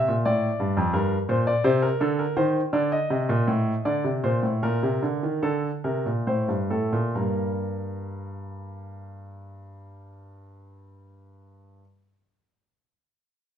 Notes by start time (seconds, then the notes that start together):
Already playing: E5
0.08 A#2
0.25 A2 D5
0.60 G2
0.77 F2
0.93 G2 A#4
1.29 A#2 C5
1.47 D5
1.64 C3 C5
1.82 A#4
2.01 D3 A4
2.19 A#4
2.37 D#3 C5
2.73 D3 D5
2.92 D#5
3.10 C3
3.29 A#2
3.48 A2
3.85 D3 D5
4.04 C3
4.24 A#2 C5
4.43 A2
4.63 A#2 A#4
4.83 C3
5.03 D3
5.23 D#3
5.43 D3 A4
5.84 C3 A#4
6.06 A#2
6.27 A2 C5
6.48 G2
6.70 A2 A4
6.93 A#2
7.15 G2 G3 A#3 A#4